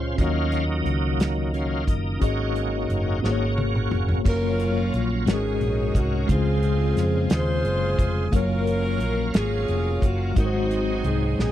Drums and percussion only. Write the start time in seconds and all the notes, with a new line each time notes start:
0.18 kick, closed hi-hat
0.52 closed hi-hat
0.86 closed hi-hat
1.20 snare, closed hi-hat
1.54 closed hi-hat
1.87 kick, closed hi-hat
2.22 kick, closed hi-hat
2.56 closed hi-hat
2.90 closed hi-hat
3.24 snare
3.58 high tom
3.75 mid tom
3.91 mid tom
4.09 floor tom
4.25 kick, crash
4.60 closed hi-hat
4.94 closed hi-hat
5.27 snare, closed hi-hat
5.61 closed hi-hat
5.95 kick, closed hi-hat
6.29 kick, closed hi-hat
6.63 closed hi-hat
6.97 snare, closed hi-hat
7.30 snare, closed hi-hat
7.65 closed hi-hat
7.99 kick, closed hi-hat
8.33 kick, closed hi-hat
8.67 closed hi-hat
9.00 closed hi-hat
9.34 snare, closed hi-hat
9.68 closed hi-hat
10.02 kick, closed hi-hat
10.36 kick, closed hi-hat
10.71 closed hi-hat
11.04 closed hi-hat
11.39 snare